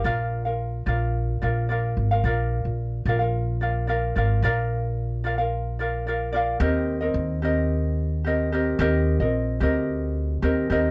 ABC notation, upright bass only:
X:1
M:4/4
L:1/16
Q:1/4=110
K:Bbmix
V:1 name="Upright bass" clef=bass
B,,,6 B,,,4 B,,,4 A,,,2 | B,,,3 B,,,3 B,,,8 A,,,2 | B,,,16 | E,,4 E,,12 |
E,,3 B,,,3 D,,6 E,,2 E,,2 |]